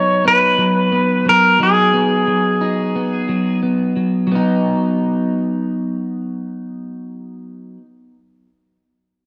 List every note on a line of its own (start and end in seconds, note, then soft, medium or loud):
0.00 0.58 F#3 medium
0.00 0.24 B3 soft
0.00 1.60 D#4 medium
0.00 0.27 C#5 loud
0.25 0.92 B3 medium
0.25 1.29 B4 medium
0.58 1.25 F#3 medium
0.92 1.93 B3 soft
1.26 1.59 F#3 medium
1.26 1.62 A#4 medium
1.60 2.27 F#3 medium
1.60 2.61 D#4 medium
1.60 3.60 G#4 medium
1.93 2.95 B3 medium
2.27 3.28 F#3 medium
2.61 4.35 D#4 medium
2.95 3.62 B3 medium
3.29 3.96 F#3 soft
3.63 4.31 B3 soft
3.96 4.27 F#3 soft
4.27 7.77 F#3 medium
4.32 7.82 B3 medium
4.32 7.85 D#4 medium